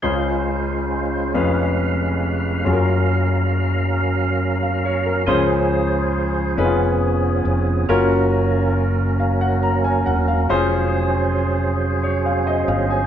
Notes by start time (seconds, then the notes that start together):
0.02 C#2 C#3 G#3 C#4 F4 G#4 C5
1.34 F1 F2 C#4 F4 G#4 B4 F5
2.64 F#1 F#2 F#3 C#4 F4 F#4 G#4 A#4
2.73 A#4
4.63 F5
4.85 C#5
5.06 A#4
5.26 C#2 C#3 F3 C#4 F4 G#4 C5
6.57 F1 B3 C#4 D#4 G#4 B4
6.64 F4
7.45 F1
7.89 F#1 F#3 A#3 C#4 F4 F#4 A#4
9.20 F5
9.41 F#5
9.63 A#5
9.84 G#5
10.06 E1 F#5
10.28 F5
10.49 F1 C#4 F4 G#4 C5
12.03 C#5
12.26 F5
12.47 D#5
12.68 G1 F5
12.90 G#5